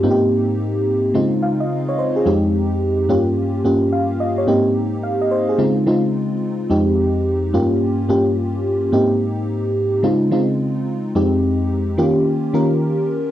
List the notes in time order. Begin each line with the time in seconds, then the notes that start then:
0.03 G#2 A#3 C4 D#4 F4
0.11 G4
1.14 C#3 G#3 C4 D#4 F4
1.43 F5
1.60 D#5
1.89 C#5
1.99 C5
2.16 G#4
2.25 F2 G#3 C4 D#4 G4
3.09 G2 A#3 C#4 F4 G4
3.64 G2 A#3 C#4 F4 G4
3.92 F5
4.20 D#5
4.38 C#5
4.47 G#2 A#3 C4 D#4 G4
5.03 F5
5.22 D#5
5.31 C5
5.49 G#4
5.58 C#3 G#3 C4 D#4 F4
5.86 C#3 G#3 C4 D#4 F4
6.70 F2 G#3 C4 D#4 G4
7.53 G2 A#3 C#4 F4 G4
8.09 G2 A#3 C#4 F4 G4
8.92 G#2 A#3 C4 D#4 G4
10.03 C#3 G#3 C4 D#4 F4
10.31 C#3 G#3 C4 D#4 F4
11.15 F2 G#3 C4 D#4 G4
11.97 D#3 A#3 C#4 F4 G4
12.53 D#3 A#3 C#4 F4 A#4